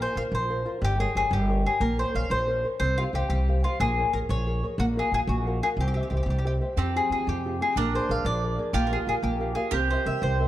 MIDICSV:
0, 0, Header, 1, 5, 480
1, 0, Start_track
1, 0, Tempo, 330215
1, 1185, Time_signature, 6, 3, 24, 8
1, 15232, End_track
2, 0, Start_track
2, 0, Title_t, "Nylon-string guitar"
2, 0, Program_c, 0, 24
2, 0, Note_on_c, 0, 58, 79
2, 16, Note_on_c, 0, 65, 55
2, 18, Note_on_c, 0, 70, 53
2, 24, Note_on_c, 0, 72, 61
2, 211, Note_off_c, 0, 58, 0
2, 218, Note_off_c, 0, 65, 0
2, 221, Note_off_c, 0, 70, 0
2, 233, Note_off_c, 0, 72, 0
2, 234, Note_on_c, 0, 65, 48
2, 241, Note_on_c, 0, 70, 54
2, 250, Note_on_c, 0, 72, 59
2, 473, Note_on_c, 0, 53, 58
2, 625, Note_off_c, 0, 65, 0
2, 627, Note_off_c, 0, 70, 0
2, 633, Note_off_c, 0, 72, 0
2, 723, Note_on_c, 0, 65, 58
2, 725, Note_on_c, 0, 70, 58
2, 739, Note_on_c, 0, 72, 63
2, 935, Note_off_c, 0, 65, 0
2, 941, Note_off_c, 0, 70, 0
2, 943, Note_off_c, 0, 53, 0
2, 943, Note_off_c, 0, 72, 0
2, 951, Note_on_c, 0, 65, 63
2, 960, Note_on_c, 0, 72, 69
2, 963, Note_on_c, 0, 70, 60
2, 1139, Note_off_c, 0, 65, 0
2, 1142, Note_off_c, 0, 70, 0
2, 1144, Note_off_c, 0, 72, 0
2, 1182, Note_on_c, 0, 55, 80
2, 1429, Note_off_c, 0, 55, 0
2, 1435, Note_on_c, 0, 67, 55
2, 1447, Note_on_c, 0, 70, 49
2, 1448, Note_on_c, 0, 73, 58
2, 1647, Note_off_c, 0, 67, 0
2, 1658, Note_off_c, 0, 70, 0
2, 1663, Note_off_c, 0, 73, 0
2, 1664, Note_on_c, 0, 67, 53
2, 1674, Note_on_c, 0, 70, 50
2, 1682, Note_on_c, 0, 73, 59
2, 1917, Note_on_c, 0, 55, 78
2, 2055, Note_off_c, 0, 67, 0
2, 2061, Note_off_c, 0, 70, 0
2, 2065, Note_off_c, 0, 73, 0
2, 2169, Note_on_c, 0, 67, 51
2, 2180, Note_on_c, 0, 70, 45
2, 2183, Note_on_c, 0, 73, 62
2, 2378, Note_off_c, 0, 70, 0
2, 2380, Note_off_c, 0, 55, 0
2, 2381, Note_off_c, 0, 67, 0
2, 2382, Note_off_c, 0, 73, 0
2, 2395, Note_on_c, 0, 67, 51
2, 2398, Note_on_c, 0, 70, 50
2, 2409, Note_on_c, 0, 73, 63
2, 2578, Note_off_c, 0, 70, 0
2, 2580, Note_off_c, 0, 67, 0
2, 2581, Note_off_c, 0, 73, 0
2, 2624, Note_on_c, 0, 58, 81
2, 2885, Note_on_c, 0, 70, 54
2, 2895, Note_on_c, 0, 72, 45
2, 2903, Note_on_c, 0, 73, 59
2, 3090, Note_off_c, 0, 70, 0
2, 3097, Note_off_c, 0, 58, 0
2, 3098, Note_off_c, 0, 72, 0
2, 3106, Note_off_c, 0, 73, 0
2, 3108, Note_on_c, 0, 70, 46
2, 3116, Note_on_c, 0, 72, 42
2, 3123, Note_on_c, 0, 73, 55
2, 3334, Note_on_c, 0, 53, 66
2, 3503, Note_off_c, 0, 70, 0
2, 3508, Note_off_c, 0, 72, 0
2, 3512, Note_off_c, 0, 73, 0
2, 3592, Note_on_c, 0, 70, 54
2, 3603, Note_on_c, 0, 72, 46
2, 3608, Note_on_c, 0, 73, 54
2, 3818, Note_off_c, 0, 70, 0
2, 3818, Note_off_c, 0, 72, 0
2, 3819, Note_off_c, 0, 53, 0
2, 3828, Note_off_c, 0, 73, 0
2, 3835, Note_on_c, 0, 70, 51
2, 3837, Note_on_c, 0, 72, 46
2, 3845, Note_on_c, 0, 73, 50
2, 4026, Note_off_c, 0, 70, 0
2, 4027, Note_off_c, 0, 72, 0
2, 4032, Note_off_c, 0, 73, 0
2, 4070, Note_on_c, 0, 60, 84
2, 4330, Note_on_c, 0, 67, 49
2, 4337, Note_on_c, 0, 72, 45
2, 4346, Note_on_c, 0, 77, 65
2, 4546, Note_off_c, 0, 67, 0
2, 4554, Note_off_c, 0, 60, 0
2, 4554, Note_off_c, 0, 72, 0
2, 4564, Note_off_c, 0, 77, 0
2, 4564, Note_on_c, 0, 67, 46
2, 4572, Note_on_c, 0, 72, 50
2, 4582, Note_on_c, 0, 77, 55
2, 4817, Note_on_c, 0, 55, 64
2, 4959, Note_off_c, 0, 67, 0
2, 4964, Note_off_c, 0, 72, 0
2, 4970, Note_off_c, 0, 77, 0
2, 5065, Note_on_c, 0, 67, 51
2, 5074, Note_on_c, 0, 72, 50
2, 5077, Note_on_c, 0, 77, 59
2, 5281, Note_off_c, 0, 67, 0
2, 5285, Note_off_c, 0, 55, 0
2, 5296, Note_off_c, 0, 72, 0
2, 5299, Note_on_c, 0, 67, 54
2, 5300, Note_off_c, 0, 77, 0
2, 5312, Note_on_c, 0, 72, 54
2, 5318, Note_on_c, 0, 77, 60
2, 5482, Note_off_c, 0, 67, 0
2, 5491, Note_off_c, 0, 72, 0
2, 5493, Note_off_c, 0, 77, 0
2, 5535, Note_on_c, 0, 58, 70
2, 5787, Note_on_c, 0, 68, 50
2, 5791, Note_on_c, 0, 70, 53
2, 5800, Note_on_c, 0, 73, 67
2, 6001, Note_off_c, 0, 58, 0
2, 6002, Note_off_c, 0, 68, 0
2, 6006, Note_off_c, 0, 70, 0
2, 6006, Note_off_c, 0, 73, 0
2, 6017, Note_on_c, 0, 68, 50
2, 6025, Note_on_c, 0, 70, 42
2, 6028, Note_on_c, 0, 73, 55
2, 6244, Note_on_c, 0, 53, 67
2, 6405, Note_off_c, 0, 68, 0
2, 6407, Note_off_c, 0, 70, 0
2, 6407, Note_off_c, 0, 73, 0
2, 6497, Note_on_c, 0, 68, 63
2, 6505, Note_on_c, 0, 70, 49
2, 6506, Note_on_c, 0, 73, 60
2, 6714, Note_off_c, 0, 53, 0
2, 6719, Note_off_c, 0, 68, 0
2, 6721, Note_off_c, 0, 70, 0
2, 6731, Note_off_c, 0, 73, 0
2, 6735, Note_on_c, 0, 68, 51
2, 6742, Note_on_c, 0, 70, 57
2, 6749, Note_on_c, 0, 73, 68
2, 6917, Note_off_c, 0, 68, 0
2, 6919, Note_off_c, 0, 70, 0
2, 6925, Note_off_c, 0, 73, 0
2, 6966, Note_on_c, 0, 58, 84
2, 7221, Note_on_c, 0, 66, 56
2, 7226, Note_on_c, 0, 70, 58
2, 7239, Note_on_c, 0, 77, 62
2, 7432, Note_off_c, 0, 58, 0
2, 7442, Note_off_c, 0, 66, 0
2, 7443, Note_off_c, 0, 77, 0
2, 7451, Note_off_c, 0, 70, 0
2, 7458, Note_on_c, 0, 66, 56
2, 7462, Note_on_c, 0, 77, 62
2, 7468, Note_on_c, 0, 70, 43
2, 7686, Note_on_c, 0, 58, 61
2, 7841, Note_off_c, 0, 66, 0
2, 7841, Note_off_c, 0, 77, 0
2, 7846, Note_off_c, 0, 70, 0
2, 7939, Note_on_c, 0, 66, 57
2, 7947, Note_on_c, 0, 70, 47
2, 7954, Note_on_c, 0, 77, 64
2, 8151, Note_off_c, 0, 58, 0
2, 8166, Note_off_c, 0, 77, 0
2, 8167, Note_off_c, 0, 66, 0
2, 8171, Note_off_c, 0, 70, 0
2, 8181, Note_on_c, 0, 66, 55
2, 8191, Note_on_c, 0, 70, 58
2, 8191, Note_on_c, 0, 77, 58
2, 8359, Note_off_c, 0, 77, 0
2, 8360, Note_off_c, 0, 66, 0
2, 8362, Note_off_c, 0, 70, 0
2, 8403, Note_on_c, 0, 60, 68
2, 8654, Note_on_c, 0, 67, 54
2, 8661, Note_on_c, 0, 72, 49
2, 8669, Note_on_c, 0, 76, 66
2, 8870, Note_off_c, 0, 60, 0
2, 8876, Note_off_c, 0, 67, 0
2, 8878, Note_off_c, 0, 72, 0
2, 8889, Note_off_c, 0, 76, 0
2, 8893, Note_on_c, 0, 67, 51
2, 8899, Note_on_c, 0, 72, 45
2, 8907, Note_on_c, 0, 76, 49
2, 9134, Note_on_c, 0, 55, 75
2, 9281, Note_off_c, 0, 67, 0
2, 9282, Note_off_c, 0, 72, 0
2, 9289, Note_off_c, 0, 76, 0
2, 9371, Note_on_c, 0, 67, 57
2, 9380, Note_on_c, 0, 72, 51
2, 9383, Note_on_c, 0, 76, 64
2, 9586, Note_off_c, 0, 67, 0
2, 9590, Note_off_c, 0, 72, 0
2, 9599, Note_off_c, 0, 76, 0
2, 9602, Note_off_c, 0, 55, 0
2, 9602, Note_on_c, 0, 67, 57
2, 9609, Note_on_c, 0, 72, 47
2, 9616, Note_on_c, 0, 76, 58
2, 9793, Note_off_c, 0, 67, 0
2, 9796, Note_off_c, 0, 72, 0
2, 9801, Note_off_c, 0, 76, 0
2, 9858, Note_on_c, 0, 53, 67
2, 10111, Note_on_c, 0, 65, 58
2, 10116, Note_on_c, 0, 67, 48
2, 10120, Note_on_c, 0, 68, 60
2, 10328, Note_off_c, 0, 65, 0
2, 10329, Note_off_c, 0, 53, 0
2, 10338, Note_off_c, 0, 67, 0
2, 10339, Note_off_c, 0, 68, 0
2, 10346, Note_on_c, 0, 65, 49
2, 10354, Note_on_c, 0, 68, 59
2, 10361, Note_on_c, 0, 67, 48
2, 10587, Note_on_c, 0, 48, 64
2, 10732, Note_off_c, 0, 65, 0
2, 10738, Note_off_c, 0, 67, 0
2, 10739, Note_off_c, 0, 68, 0
2, 10837, Note_on_c, 0, 65, 53
2, 10847, Note_on_c, 0, 67, 46
2, 10847, Note_on_c, 0, 68, 52
2, 11036, Note_off_c, 0, 65, 0
2, 11049, Note_off_c, 0, 48, 0
2, 11049, Note_off_c, 0, 67, 0
2, 11053, Note_on_c, 0, 65, 58
2, 11055, Note_off_c, 0, 68, 0
2, 11066, Note_on_c, 0, 67, 52
2, 11073, Note_on_c, 0, 68, 62
2, 11237, Note_off_c, 0, 65, 0
2, 11245, Note_off_c, 0, 67, 0
2, 11249, Note_off_c, 0, 68, 0
2, 11294, Note_on_c, 0, 58, 78
2, 11551, Note_on_c, 0, 68, 56
2, 11551, Note_on_c, 0, 70, 56
2, 11560, Note_on_c, 0, 74, 60
2, 11753, Note_off_c, 0, 68, 0
2, 11755, Note_off_c, 0, 58, 0
2, 11761, Note_off_c, 0, 70, 0
2, 11765, Note_off_c, 0, 74, 0
2, 11770, Note_on_c, 0, 68, 55
2, 11777, Note_on_c, 0, 70, 51
2, 11788, Note_on_c, 0, 74, 58
2, 12018, Note_on_c, 0, 53, 66
2, 12152, Note_off_c, 0, 68, 0
2, 12157, Note_off_c, 0, 70, 0
2, 12159, Note_off_c, 0, 74, 0
2, 12262, Note_on_c, 0, 68, 52
2, 12271, Note_on_c, 0, 70, 52
2, 12274, Note_on_c, 0, 74, 60
2, 12459, Note_off_c, 0, 68, 0
2, 12465, Note_off_c, 0, 70, 0
2, 12470, Note_off_c, 0, 74, 0
2, 12472, Note_off_c, 0, 53, 0
2, 12476, Note_on_c, 0, 68, 60
2, 12482, Note_on_c, 0, 70, 58
2, 12490, Note_on_c, 0, 74, 57
2, 12659, Note_off_c, 0, 68, 0
2, 12663, Note_off_c, 0, 70, 0
2, 12666, Note_off_c, 0, 74, 0
2, 12720, Note_on_c, 0, 58, 82
2, 12953, Note_on_c, 0, 70, 50
2, 12961, Note_on_c, 0, 67, 59
2, 12967, Note_on_c, 0, 77, 72
2, 13172, Note_off_c, 0, 67, 0
2, 13172, Note_off_c, 0, 77, 0
2, 13175, Note_off_c, 0, 70, 0
2, 13181, Note_off_c, 0, 58, 0
2, 13186, Note_on_c, 0, 67, 50
2, 13194, Note_on_c, 0, 70, 50
2, 13197, Note_on_c, 0, 77, 52
2, 13406, Note_on_c, 0, 58, 68
2, 13576, Note_off_c, 0, 67, 0
2, 13576, Note_off_c, 0, 77, 0
2, 13578, Note_off_c, 0, 70, 0
2, 13660, Note_on_c, 0, 67, 56
2, 13666, Note_on_c, 0, 70, 51
2, 13676, Note_on_c, 0, 77, 69
2, 13878, Note_off_c, 0, 67, 0
2, 13882, Note_off_c, 0, 58, 0
2, 13882, Note_off_c, 0, 77, 0
2, 13884, Note_off_c, 0, 70, 0
2, 13894, Note_on_c, 0, 67, 55
2, 13901, Note_on_c, 0, 70, 52
2, 13903, Note_on_c, 0, 77, 68
2, 14084, Note_off_c, 0, 67, 0
2, 14087, Note_off_c, 0, 77, 0
2, 14088, Note_off_c, 0, 70, 0
2, 14149, Note_on_c, 0, 60, 80
2, 14408, Note_on_c, 0, 70, 50
2, 14416, Note_on_c, 0, 72, 52
2, 14425, Note_on_c, 0, 76, 63
2, 14608, Note_off_c, 0, 70, 0
2, 14617, Note_off_c, 0, 60, 0
2, 14617, Note_off_c, 0, 72, 0
2, 14620, Note_off_c, 0, 76, 0
2, 14626, Note_on_c, 0, 70, 49
2, 14633, Note_on_c, 0, 72, 43
2, 14640, Note_on_c, 0, 76, 60
2, 14882, Note_on_c, 0, 55, 55
2, 15019, Note_off_c, 0, 70, 0
2, 15024, Note_off_c, 0, 72, 0
2, 15025, Note_off_c, 0, 76, 0
2, 15115, Note_on_c, 0, 70, 47
2, 15122, Note_on_c, 0, 72, 42
2, 15128, Note_on_c, 0, 76, 53
2, 15232, Note_off_c, 0, 55, 0
2, 15232, Note_off_c, 0, 70, 0
2, 15232, Note_off_c, 0, 72, 0
2, 15232, Note_off_c, 0, 76, 0
2, 15232, End_track
3, 0, Start_track
3, 0, Title_t, "Mandolin"
3, 0, Program_c, 1, 25
3, 27, Note_on_c, 1, 72, 104
3, 230, Note_off_c, 1, 72, 0
3, 250, Note_on_c, 1, 77, 107
3, 323, Note_off_c, 1, 77, 0
3, 504, Note_on_c, 1, 72, 93
3, 994, Note_off_c, 1, 72, 0
3, 1228, Note_on_c, 1, 67, 119
3, 1445, Note_off_c, 1, 67, 0
3, 1454, Note_on_c, 1, 68, 91
3, 1663, Note_off_c, 1, 68, 0
3, 1698, Note_on_c, 1, 68, 105
3, 1901, Note_off_c, 1, 68, 0
3, 1934, Note_on_c, 1, 67, 101
3, 2370, Note_off_c, 1, 67, 0
3, 2419, Note_on_c, 1, 68, 86
3, 2628, Note_on_c, 1, 70, 107
3, 2642, Note_off_c, 1, 68, 0
3, 2862, Note_off_c, 1, 70, 0
3, 2896, Note_on_c, 1, 72, 97
3, 3104, Note_off_c, 1, 72, 0
3, 3132, Note_on_c, 1, 77, 89
3, 3340, Note_off_c, 1, 77, 0
3, 3358, Note_on_c, 1, 72, 105
3, 3867, Note_off_c, 1, 72, 0
3, 4064, Note_on_c, 1, 72, 121
3, 4311, Note_off_c, 1, 72, 0
3, 4327, Note_on_c, 1, 65, 88
3, 4399, Note_off_c, 1, 65, 0
3, 4578, Note_on_c, 1, 67, 99
3, 4777, Note_off_c, 1, 67, 0
3, 4794, Note_on_c, 1, 67, 96
3, 5254, Note_off_c, 1, 67, 0
3, 5293, Note_on_c, 1, 65, 87
3, 5509, Note_off_c, 1, 65, 0
3, 5530, Note_on_c, 1, 68, 118
3, 5980, Note_off_c, 1, 68, 0
3, 6008, Note_on_c, 1, 70, 93
3, 6081, Note_off_c, 1, 70, 0
3, 6255, Note_on_c, 1, 73, 101
3, 6754, Note_off_c, 1, 73, 0
3, 6972, Note_on_c, 1, 66, 101
3, 7045, Note_off_c, 1, 66, 0
3, 7254, Note_on_c, 1, 68, 93
3, 7449, Note_off_c, 1, 68, 0
3, 7475, Note_on_c, 1, 68, 111
3, 7547, Note_off_c, 1, 68, 0
3, 7688, Note_on_c, 1, 66, 86
3, 8133, Note_off_c, 1, 66, 0
3, 8185, Note_on_c, 1, 68, 106
3, 8258, Note_off_c, 1, 68, 0
3, 8438, Note_on_c, 1, 67, 100
3, 8521, Note_off_c, 1, 67, 0
3, 8543, Note_on_c, 1, 67, 81
3, 8618, Note_off_c, 1, 67, 0
3, 8635, Note_on_c, 1, 67, 62
3, 8724, Note_off_c, 1, 67, 0
3, 8763, Note_on_c, 1, 67, 50
3, 8840, Note_off_c, 1, 67, 0
3, 8866, Note_on_c, 1, 67, 48
3, 8943, Note_off_c, 1, 67, 0
3, 8967, Note_on_c, 1, 67, 53
3, 9036, Note_off_c, 1, 67, 0
3, 9054, Note_on_c, 1, 67, 63
3, 9142, Note_off_c, 1, 67, 0
3, 9162, Note_on_c, 1, 67, 61
3, 9257, Note_off_c, 1, 67, 0
3, 9281, Note_on_c, 1, 67, 64
3, 9374, Note_off_c, 1, 67, 0
3, 9401, Note_on_c, 1, 67, 66
3, 9482, Note_off_c, 1, 67, 0
3, 9861, Note_on_c, 1, 67, 99
3, 10093, Note_off_c, 1, 67, 0
3, 10125, Note_on_c, 1, 68, 98
3, 10332, Note_off_c, 1, 68, 0
3, 10353, Note_on_c, 1, 68, 87
3, 10562, Note_off_c, 1, 68, 0
3, 10594, Note_on_c, 1, 67, 91
3, 11033, Note_off_c, 1, 67, 0
3, 11079, Note_on_c, 1, 68, 88
3, 11281, Note_off_c, 1, 68, 0
3, 11300, Note_on_c, 1, 70, 108
3, 11526, Note_off_c, 1, 70, 0
3, 11560, Note_on_c, 1, 72, 96
3, 11783, Note_off_c, 1, 72, 0
3, 11789, Note_on_c, 1, 77, 87
3, 11990, Note_off_c, 1, 77, 0
3, 12005, Note_on_c, 1, 74, 111
3, 12500, Note_off_c, 1, 74, 0
3, 12712, Note_on_c, 1, 67, 121
3, 12885, Note_off_c, 1, 67, 0
3, 12890, Note_on_c, 1, 70, 67
3, 12955, Note_off_c, 1, 70, 0
3, 12977, Note_on_c, 1, 68, 82
3, 13050, Note_off_c, 1, 68, 0
3, 13210, Note_on_c, 1, 68, 82
3, 13283, Note_off_c, 1, 68, 0
3, 13424, Note_on_c, 1, 67, 90
3, 13876, Note_off_c, 1, 67, 0
3, 13882, Note_on_c, 1, 68, 91
3, 14108, Note_off_c, 1, 68, 0
3, 14128, Note_on_c, 1, 70, 110
3, 14200, Note_off_c, 1, 70, 0
3, 14398, Note_on_c, 1, 72, 81
3, 14612, Note_off_c, 1, 72, 0
3, 14629, Note_on_c, 1, 76, 91
3, 14845, Note_off_c, 1, 76, 0
3, 14868, Note_on_c, 1, 72, 90
3, 15232, Note_off_c, 1, 72, 0
3, 15232, End_track
4, 0, Start_track
4, 0, Title_t, "Mandolin"
4, 0, Program_c, 2, 25
4, 9846, Note_on_c, 2, 60, 67
4, 11289, Note_off_c, 2, 60, 0
4, 11295, Note_on_c, 2, 62, 80
4, 12703, Note_on_c, 2, 65, 84
4, 12752, Note_off_c, 2, 62, 0
4, 14108, Note_off_c, 2, 65, 0
4, 14114, Note_on_c, 2, 67, 98
4, 15232, Note_off_c, 2, 67, 0
4, 15232, End_track
5, 0, Start_track
5, 0, Title_t, "Upright bass"
5, 0, Program_c, 3, 32
5, 225, Note_on_c, 3, 34, 77
5, 379, Note_off_c, 3, 34, 0
5, 459, Note_on_c, 3, 34, 103
5, 930, Note_off_c, 3, 34, 0
5, 1186, Note_on_c, 3, 31, 117
5, 1502, Note_off_c, 3, 31, 0
5, 1674, Note_on_c, 3, 31, 81
5, 1823, Note_off_c, 3, 31, 0
5, 1900, Note_on_c, 3, 31, 118
5, 2367, Note_off_c, 3, 31, 0
5, 2622, Note_on_c, 3, 34, 105
5, 2939, Note_off_c, 3, 34, 0
5, 3120, Note_on_c, 3, 34, 88
5, 3269, Note_off_c, 3, 34, 0
5, 3345, Note_on_c, 3, 34, 108
5, 3820, Note_off_c, 3, 34, 0
5, 4068, Note_on_c, 3, 36, 97
5, 4392, Note_off_c, 3, 36, 0
5, 4551, Note_on_c, 3, 36, 87
5, 4710, Note_off_c, 3, 36, 0
5, 4789, Note_on_c, 3, 36, 95
5, 5262, Note_off_c, 3, 36, 0
5, 5522, Note_on_c, 3, 34, 116
5, 5839, Note_off_c, 3, 34, 0
5, 6011, Note_on_c, 3, 34, 76
5, 6162, Note_off_c, 3, 34, 0
5, 6240, Note_on_c, 3, 34, 116
5, 6706, Note_off_c, 3, 34, 0
5, 6949, Note_on_c, 3, 34, 115
5, 7267, Note_off_c, 3, 34, 0
5, 7436, Note_on_c, 3, 34, 89
5, 7589, Note_off_c, 3, 34, 0
5, 7667, Note_on_c, 3, 34, 120
5, 8135, Note_off_c, 3, 34, 0
5, 8383, Note_on_c, 3, 36, 107
5, 8702, Note_off_c, 3, 36, 0
5, 8878, Note_on_c, 3, 36, 92
5, 9030, Note_off_c, 3, 36, 0
5, 9100, Note_on_c, 3, 36, 102
5, 9578, Note_off_c, 3, 36, 0
5, 9836, Note_on_c, 3, 41, 87
5, 10159, Note_off_c, 3, 41, 0
5, 10318, Note_on_c, 3, 41, 76
5, 10475, Note_off_c, 3, 41, 0
5, 10568, Note_on_c, 3, 41, 104
5, 11033, Note_off_c, 3, 41, 0
5, 11279, Note_on_c, 3, 34, 108
5, 11592, Note_off_c, 3, 34, 0
5, 11762, Note_on_c, 3, 34, 88
5, 11911, Note_off_c, 3, 34, 0
5, 11988, Note_on_c, 3, 34, 105
5, 12452, Note_off_c, 3, 34, 0
5, 12694, Note_on_c, 3, 34, 115
5, 13011, Note_off_c, 3, 34, 0
5, 13182, Note_on_c, 3, 34, 85
5, 13333, Note_off_c, 3, 34, 0
5, 13410, Note_on_c, 3, 34, 98
5, 13879, Note_off_c, 3, 34, 0
5, 14124, Note_on_c, 3, 36, 89
5, 14446, Note_off_c, 3, 36, 0
5, 14621, Note_on_c, 3, 36, 78
5, 14774, Note_off_c, 3, 36, 0
5, 14853, Note_on_c, 3, 36, 111
5, 15232, Note_off_c, 3, 36, 0
5, 15232, End_track
0, 0, End_of_file